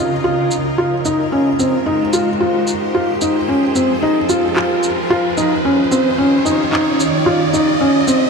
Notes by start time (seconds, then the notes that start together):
Already playing: C#3 C#4 F4 A#4 D#5, riser
0.24 F4
0.51 shaker
0.78 G#3 D#4 F4 G4 C5
1.05 D#4, shaker
1.32 C#4
1.59 C4, shaker
1.86 D#4
2.13 F4, shaker
2.40 F4
2.67 shaker
2.94 F3 F4 G#4
3.21 D#4, shaker
3.48 C#4
3.75 C4, shaker
4.02 D#4
4.29 F4, shaker
4.56 F4, clap
4.83 shaker
5.10 D#3 C#4 F4 G4 D#5
5.37 D#4, shaker
5.65 C#4
5.91 C4, shaker
6.18 C#4
6.45 D#4, shaker
6.72 D#4, clap
7.00 shaker
7.26 C#3 F4 A#4
7.53 D#4, shaker
7.80 C#4
8.07 C4, shaker